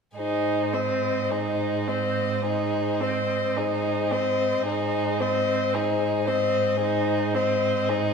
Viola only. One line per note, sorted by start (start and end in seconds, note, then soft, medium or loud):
0.17 0.75 D#4 soft
0.74 1.32 C4 soft
1.31 1.89 D#4 soft
1.88 2.44 C4 soft
2.45 3.02 D#4 soft
3.01 3.58 C4 soft
3.57 4.13 D#4 soft
4.11 4.65 C4 soft
4.66 5.22 D#4 soft
5.21 5.76 C4 soft
5.75 6.29 D#4 soft
6.28 6.80 C4 soft
6.80 7.36 D#4 soft
7.35 7.91 C4 soft
7.89 8.14 D#4 soft